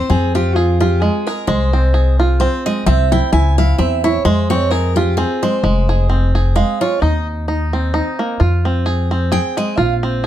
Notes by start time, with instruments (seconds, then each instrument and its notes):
Already playing: five-string banjo C4
0.10 upright bass F2, five-string banjo C4, steel-string acoustic guitar G#4
0.35 five-string banjo F4, steel-string acoustic guitar G4
0.55 steel-string acoustic guitar F4, five-string banjo G#4
0.81 five-string banjo F4, steel-string acoustic guitar G4
1.01 five-string banjo G#3, steel-string acoustic guitar G#4
1.27 five-string banjo G#4, steel-string acoustic guitar A#4
1.47 upright bass C2, five-string banjo G#3, steel-string acoustic guitar C5
1.73 five-string banjo C4
1.94 five-string banjo G#4
2.20 five-string banjo F4
2.40 five-string banjo C4, steel-string acoustic guitar C5
2.66 five-string banjo G#3, steel-string acoustic guitar D#5
2.86 upright bass C2, five-string banjo C4, steel-string acoustic guitar E5
3.12 five-string banjo E4, steel-string acoustic guitar G5
3.32 upright bass C#2, five-string banjo E4, steel-string acoustic guitar G#5
3.58 five-string banjo E4, steel-string acoustic guitar F5
3.78 upright bass E2, five-string banjo C4, steel-string acoustic guitar E5
4.04 five-string banjo E4, steel-string acoustic guitar C#5
4.25 upright bass F2, five-string banjo G#3, steel-string acoustic guitar C5
4.50 five-string banjo C4, steel-string acoustic guitar C#5
4.70 five-string banjo G#4, steel-string acoustic guitar A#4
4.96 five-string banjo F4, steel-string acoustic guitar G4
5.17 five-string banjo C4, steel-string acoustic guitar G#4
5.43 five-string banjo G#3, steel-string acoustic guitar C5
5.63 upright bass F1, five-string banjo G#3
5.89 five-string banjo G#4
6.10 five-string banjo C4
6.35 five-string banjo G#4
6.56 five-string banjo G#3, steel-string acoustic guitar F5
6.81 five-string banjo F4, steel-string acoustic guitar C#5
7.02 upright bass D#2, five-string banjo D#4, steel-string acoustic guitar D#5
7.48 five-string banjo D#4
7.73 five-string banjo C4
7.94 five-string banjo D#4
8.19 five-string banjo A#3
8.40 upright bass F2, five-string banjo F4
8.65 five-string banjo C4
8.86 five-string banjo G#4
9.11 five-string banjo C4
9.32 five-string banjo G#4, steel-string acoustic guitar G5
9.57 five-string banjo G#3, steel-string acoustic guitar D#5
9.77 upright bass A#1, five-string banjo F4, steel-string acoustic guitar F5
10.03 five-string banjo C4
10.24 five-string banjo G#4